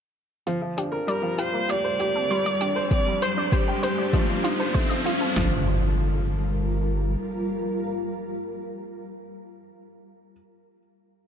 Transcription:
0.46 1.00 G1 loud
0.46 0.60 F3 medium
0.46 0.56 F4 medium
0.46 closed hi-hat soft
0.46 riser medium
0.62 0.76 F3 medium
0.77 0.92 D4 medium
0.77 0.81 G4 medium
0.77 closed hi-hat medium
0.92 1.07 A#4 medium
0.92 0.99 A#4 medium
1.07 1.22 G3 medium
1.07 1.41 A#4 medium
1.07 1.14 D5 loud
1.07 closed hi-hat soft
1.22 1.37 F3 medium
1.22 1.32 F4 medium
1.38 1.53 F4 loud
1.38 1.42 G4 medium
1.38 1.72 C5 medium
1.38 closed hi-hat medium
1.54 1.68 A#3 medium
1.54 1.60 A#4 medium
1.68 2.38 D2 medium
1.68 4.12 G3 medium
1.68 1.83 G4 medium
1.68 4.12 C5 medium
1.68 1.79 D5 medium
1.68 2.91 D5 loud
1.68 closed hi-hat soft
1.84 1.93 C5 medium
1.99 2.14 G4 medium
1.99 2.04 G4 medium
1.99 closed hi-hat medium
2.15 2.24 C4 medium
2.15 2.21 A4 medium
2.30 2.44 G3 loud
2.30 2.37 C5 loud
2.45 2.60 G3 medium
2.45 2.52 D5 medium
2.45 closed hi-hat soft
2.61 2.76 D4 medium
2.61 2.65 G4 loud
2.61 closed hi-hat medium
2.76 2.86 D1 loud
2.76 2.83 A4 medium
2.76 2.91 C5 medium
2.91 3.45 C2 loud
2.91 3.06 C4 medium
2.91 3.01 G4 medium
2.91 3.24 D5 loud
2.91 kick loud
2.91 closed hi-hat soft
3.06 3.21 G3 medium
3.22 3.37 C5 loud
3.22 3.54 C5 medium
3.22 3.26 C5 loud
3.22 closed hi-hat medium
3.37 3.52 D4 medium
3.37 3.44 D5 medium
3.52 4.75 G4 medium
3.52 3.67 C5 medium
3.52 3.59 G5 loud
3.52 kick loud
3.52 closed hi-hat soft
3.68 3.77 G4 medium
3.68 3.77 G5 medium
3.83 3.87 C5 medium
3.83 3.98 C5 loud
3.83 closed hi-hat medium
3.98 4.07 D4 medium
3.98 4.05 D5 medium
4.13 4.27 F3 loud
4.13 4.23 D#5 medium
4.13 kick loud
4.13 closed hi-hat soft
4.29 4.44 F3 medium
4.44 4.98 F1 loud
4.44 4.59 D#4 medium
4.44 4.48 F4 loud
4.44 closed hi-hat medium
4.59 4.66 A4 medium
4.59 4.74 C5 medium
4.74 4.90 A3 medium
4.74 4.81 C5 loud
4.74 kick loud
4.89 5.05 F3 medium
4.89 4.96 D#5 loud
4.89 closed hi-hat soft
5.06 5.09 F4 loud
5.06 5.20 F4 loud
5.06 closed hi-hat medium
5.21 5.36 C4 medium
5.21 5.27 A4 medium
5.36 7.16 G1 loud
5.36 5.65 F3 medium
5.36 8.57 G3 medium
5.36 8.57 F4 medium
5.36 5.65 F4 medium
5.36 8.57 A#4 loud
5.36 snare loud
5.36 open hi-hat medium
5.36 impact medium

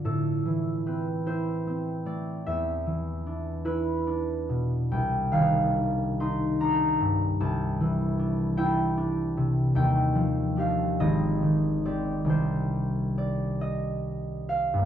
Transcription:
0.05 2.50 A2 soft
0.05 2.50 A4 medium
0.45 2.50 E3 soft
0.86 1.66 C4 soft
0.86 3.64 B4 medium
1.26 3.64 E4 soft
1.26 2.50 C5 medium
1.67 2.50 C4 medium
2.05 2.50 A3 soft
2.05 2.74 D5 medium
2.46 4.97 E2 medium
2.46 4.96 E5 medium
2.87 4.97 E3 soft
3.26 4.06 D4 soft
3.65 4.96 E4 medium
3.65 4.96 B4 medium
4.07 5.75 D4 medium
4.49 4.96 B2 soft
4.92 7.39 C2 medium
4.92 8.56 G5 medium
5.32 7.42 D#3 medium
5.32 9.22 F5 medium
5.76 6.59 D4 soft
6.20 7.43 D#4 medium
6.20 9.80 C6 medium
6.60 8.18 D4 medium
6.60 7.43 A#5 medium
7.01 7.43 G2 soft
7.40 9.80 C2 medium
7.40 9.80 A5 medium
7.80 9.80 E3 medium
8.19 8.96 D4 soft
8.57 9.80 E4 medium
8.57 9.74 G5 loud
8.97 10.56 D4 medium
9.37 9.80 C3 soft
9.75 11.05 D#2 medium
9.75 13.66 G5 loud
10.15 11.05 F3 medium
10.57 11.05 D4 soft
10.57 11.85 G4 medium
10.57 11.05 F5 medium
11.00 12.34 G#1 medium
11.00 13.60 D#5 medium
11.43 12.25 D#3 soft
11.85 14.81 C4 soft
11.85 12.27 G4 soft
11.85 12.61 D5 medium
12.24 14.85 C2 medium
12.24 14.85 D#3 soft
12.24 14.85 D4 soft
12.24 14.85 G4 soft
12.29 14.85 C5 medium
13.18 14.85 D5 medium
13.61 14.85 D#5 medium
14.49 14.85 F5 medium
14.74 14.85 G2 medium
14.78 14.85 A#3 soft

